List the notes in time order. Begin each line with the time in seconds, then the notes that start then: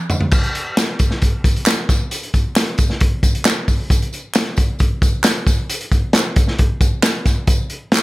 0.10 floor tom, tambourine
0.21 floor tom
0.31 kick, crash, tambourine
0.43 closed hi-hat
0.55 closed hi-hat
0.77 snare, clap, closed hi-hat, tambourine
0.99 kick, closed hi-hat, tambourine
1.11 snare
1.22 kick, closed hi-hat, tambourine
1.44 kick, closed hi-hat, tambourine
1.56 closed hi-hat
1.66 snare, clap, closed hi-hat, tambourine
1.89 kick, snare, closed hi-hat, tambourine
2.11 closed hi-hat, tambourine
2.23 closed hi-hat
2.34 kick, closed hi-hat, tambourine
2.56 snare, clap, closed hi-hat, tambourine
2.78 kick, closed hi-hat, tambourine
2.90 snare
3.00 kick, closed hi-hat
3.23 kick, closed hi-hat, tambourine
3.35 closed hi-hat
3.45 snare, clap, closed hi-hat, tambourine
3.68 kick, open hi-hat, tambourine
3.90 kick, closed hi-hat, tambourine
4.02 closed hi-hat
4.13 closed hi-hat, tambourine
4.35 snare, clap, closed hi-hat, tambourine
4.56 kick, closed hi-hat, tambourine
4.79 kick, closed hi-hat, tambourine
5.02 kick, closed hi-hat, tambourine
5.24 snare, clap, closed hi-hat, tambourine
5.47 kick, snare, closed hi-hat, tambourine
5.70 closed hi-hat, tambourine
5.81 closed hi-hat
5.92 kick, closed hi-hat, tambourine
6.13 snare, clap, closed hi-hat, tambourine
6.36 kick, closed hi-hat, tambourine
6.48 snare
6.59 kick, closed hi-hat
6.81 kick, closed hi-hat, tambourine
7.03 snare, clap, closed hi-hat, tambourine
7.25 kick, snare, closed hi-hat, tambourine
7.47 kick, closed hi-hat, tambourine
7.70 closed hi-hat
7.92 snare, clap, closed hi-hat, tambourine